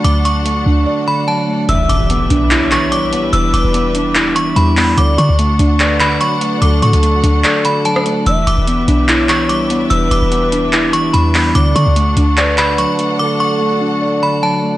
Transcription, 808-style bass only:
\new Staff \with { instrumentName = "808-style bass" } { \clef bass \time 4/4 \key e \dorian \tempo 4 = 146 d,4. d,8 r2 | e,,8 e,,16 e,,8. b,,2~ b,,8 | e,,8 e,,16 e,,2~ e,,16 e,4 | d,8 d16 d,8. d,4. r4 |
d,8 a,16 d,8. d,8 r2 | e,,8 e,,16 e,,8. b,,2~ b,,8 | e,,8 e,,16 e,,2~ e,,16 e,4 | d,8 d16 d,8. d,4.~ d,16 r8. |
r1 | }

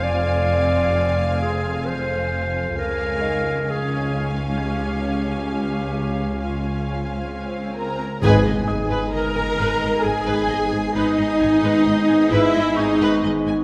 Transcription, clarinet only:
\new Staff \with { instrumentName = "Clarinet" } { \time 3/4 \key cis \dorian \tempo 4 = 66 d''4. aes'8 c''4 | ais'4 gis'8 r8 g'4 | g'4 eis'4. r8 | r2. |
r2. | }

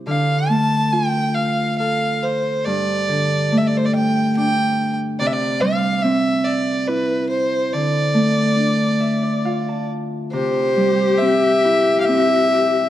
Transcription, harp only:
<<
  \new Staff \with { instrumentName = "Harp" } { \time 3/4 \key c \mixolydian \tempo 4 = 70 r2. | r2. | r2. | r4. e''16 d''16 f''16 a''8. |
r2. | }
  \new Staff \with { instrumentName = "Harp" } { \time 3/4 \key c \mixolydian d8 a8 f'4 a'4 | g,8 d8 a4 d'4 | c8 g8 c'4 e'4 | d8 a8 d'4 f'4 |
c8 g8 c'8 e'8 c'8 g'8 | }
>>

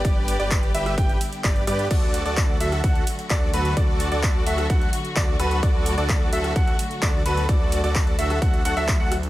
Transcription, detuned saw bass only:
\new Staff \with { instrumentName = "Detuned saw bass" } { \clef bass \time 4/4 \key d \major \tempo 4 = 129 g,,8. g,,8. g,,8 g,,8 r8 g,,8 g,8 | d,8. d,8. d,8 d,8 r8 d,8 d,8 | d,8. d,8. d,8 d,8 r8 d,8 d,8 | d,8. d,8. d,8 d,8 r8 d,8 d,8 |
d,8. d,8. d,8 d,8 d,16 d,8 d,8. | }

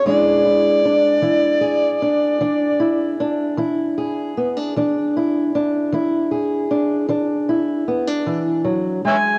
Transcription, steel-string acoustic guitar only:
\new Staff \with { instrumentName = "Steel-string acoustic guitar" } { \time 12/8 \key e \mixolydian \tempo 4. = 51 << { <gis d' e' gis'>8 e'8 d'8 e'8 gis'8 d'8 d'8 e'8 d'8 e'8 gis'8 b16 d'16 | d'8 e'8 d'8 e'8 gis'8 d'8 d'8 e'8 b16 d'4.~ d'16 | } \\ { e4 r8 e4 r8 e4 r8 e4 r8 | e4 r8 e4 r8 e4 r8 e8 fis8 gis8 | } >> }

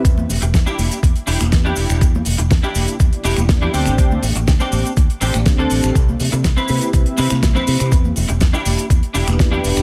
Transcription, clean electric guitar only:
\new Staff \with { instrumentName = "Clean electric guitar" } { \time 4/4 \key e \minor \tempo 4 = 122 r4 r16 <d' e' g'>8. r8 <d' e' g'>16 r8 <d' e' g'>8. | r4 r16 <d' e' g'>8. r8 <d' e' g'>16 r8 <d' e' g'>16 <c' d' g'>8~ | <c' d' g'>8 r8. <c' d' g'>8. r8 <c' d' g'>16 r8 <c' d' a'>8. | r4 r16 <c' e' b'>8. r8 <c' e' b'>16 r8 <c' e' b'>8. |
r4 r16 <d' e' g'>8. r8 <d' e' g'>16 r8 <d' e' g'>8. | }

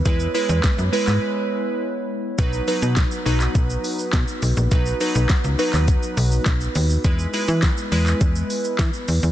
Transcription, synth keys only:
\new Staff \with { instrumentName = "Synth keys" } { \time 4/4 \key b \major \tempo 4 = 103 <gis e' b'>8 <gis e' b'>4 <gis e' b'>4. r4 | <fis dis' b'>8 <fis dis' b'>4 <fis dis' b'>4. r4 | <fis dis' b'>8 <fis dis' b'>4 <fis dis' b'>4. r4 | <gis e' b'>8 <gis e' b'>4 <gis e' b'>4. r4 | }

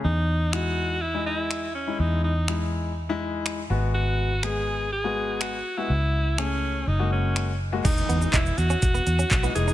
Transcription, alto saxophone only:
\new Staff \with { instrumentName = "Alto saxophone" } { \time 4/4 \key e \lydian \tempo 4 = 123 dis'4 fis'4 e'8 e'4 cis'8 | dis'8 dis'4 r2 r8 | fis'4 gis'4 gis'4 fis'8. e'16~ | e'4 cis'4 dis'8 cis'4 r8 |
dis'4 e'8 fis'2 gis'8 | }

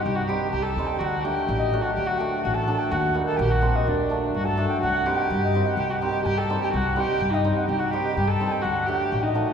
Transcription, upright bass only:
\new Staff \with { instrumentName = "Upright bass" } { \clef bass \time 2/4 \tempo 4 = 126 c,4 c,8 d,8 | d,4 a,,4 | d,4 a,,4 | ees,4 bes,,4 |
d,4 g,4 | c,4 g,4 | c,4 g,4 | c,4 g,4 |
c,4 g,4 | d,4 a,,4 | }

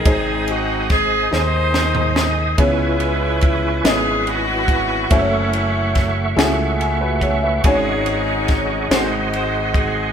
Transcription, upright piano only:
<<
  \new Staff \with { instrumentName = "Upright piano" } { \time 6/8 \key gis \phrygian \tempo 4. = 47 << { r2. | r2. | r2 gis''16 <fis' b'>16 <gis' cis'' fis''>16 <b' e''>16~ | <b' e''>16 r2 r8. | } \\ { <dis' gis' bis'>4 r8 <dis' gis' bis'>4 r8 | <b cis' e' gis' cis''>4 r8 <b cis' dis' e' gis' dis''>4 r8 | <a cis' e' fis' bis' cis''>4 r8 <gis a cis' e' fis' gis'>4 r8 | <gis cis' dis' fis' cis''>4 r8 <gis bis dis' fis' bis'>4 r8 | } >> }
  \new Staff \with { instrumentName = "Upright piano" } { \clef bass \time 6/8 \key gis \phrygian gis,4. r4. | cis4. r4. | r2. | gis,4. gis,4. | }
>>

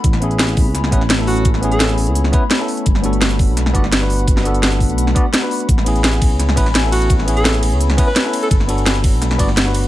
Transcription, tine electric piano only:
\new Staff \with { instrumentName = "Tine electric piano" } { \time 4/4 \key a \major \tempo 4 = 170 r8 <b cis' e' gis'>2 <b cis' e' b'>16 r8 <b cis' e' a'>8.~ | <b cis' e' a'>8 <b cis' e' gis'>2 <b cis' e' b'>16 r8 <b cis' e' a'>8. | r8 <b d' fis' a'>2 <b d' fis' d''>16 r8 <b d' fis' b'>8.~ | <b d' fis' b'>8 <b d' fis' a'>2 <b d' fis' d''>16 r8 <b d' fis' b'>8. |
r8 <b cis' e' gis'>2 <b cis' e' b'>16 r8 <b cis' e' a'>8.~ | <b cis' e' a'>8 <b cis' e' gis'>2 <b cis' e' b'>16 r8 <b cis' e' a'>8. | r8 <b d' fis' a'>2 <b d' fis' d''>16 r8 <b d' fis' b'>8. | }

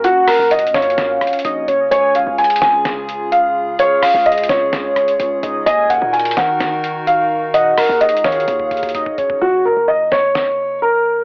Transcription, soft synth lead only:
\new Staff \with { instrumentName = "Soft synth lead" } { \time 4/4 \key fis \major \tempo 4 = 128 fis''4. eis''4. dis''8 cis''8 | gis''4 r2. | eis''4. cis''2 dis''8 | gis''4 r2. |
fis''4. eis''4. dis''8 cis''8 | r1 | }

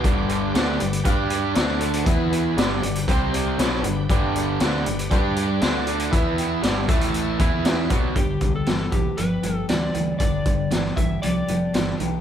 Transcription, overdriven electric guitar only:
\new Staff \with { instrumentName = "Overdriven electric guitar" } { \clef bass \time 4/4 \key g \mixolydian \tempo 4 = 118 <g, d g>4 <d a d'>8 <g, d>8 <g d' g'>4 <d a d'>4 | <e b e'>4 <g, d g>8 <g, d>8 <c g c'>4 <b, fis b>8 <g, d>8 | <g, d g>4 <d a d'>8 <g, d>8 <g d' g'>4 <d a d'>4 | <e b e'>4 <g, d g>8 <a, e a>4 <e b e'>4 <b, fis b>8 |
<g, d>8 <g, d>8 <g, e>8 <g, e>8 <g, f>8 <g, f>8 <g, e>8 <g, e>8 | <g, d>8 <g, d>8 <g, e>8 <g, e>8 <g, f>8 <g, f>8 <g, e>8 <g, e>8 | }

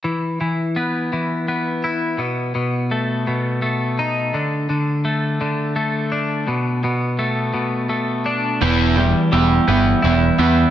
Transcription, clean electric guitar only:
\new Staff \with { instrumentName = "Clean electric guitar" } { \clef bass \time 3/4 \key e \minor \tempo 4 = 84 e8 e8 b8 e8 b8 e'8 | b,8 b,8 a8 b,8 a8 dis'8 | d8 d8 a8 d8 a8 d'8 | b,8 b,8 a8 b,8 a8 d'8 |
e8 g8 g8 b8 e'8 b8 | }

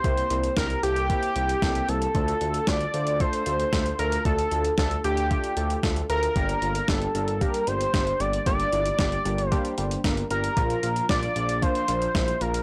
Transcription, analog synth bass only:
\new Staff \with { instrumentName = "Analog synth bass" } { \clef bass \time 4/4 \key d \minor \tempo 4 = 114 c,8 c,8 c,8 c,8. r16 c,8 c,8 c,8 | d,8 d,8 d,8 d,8. r16 d,8 d,8 d,8 | d,8 d,8 d,8 d,8. r16 d,8 d,8 d,8 | g,,8 g,,8 g,,8 g,,8. r16 g,,8 g,,8 g,,8 |
g,,8 g,,8 g,,8 g,,8. r16 g,,8 g,,8 g,,8 | bes,,8 bes,,8 bes,,8 bes,,8. r16 bes,,8 bes,,8 bes,,8 | }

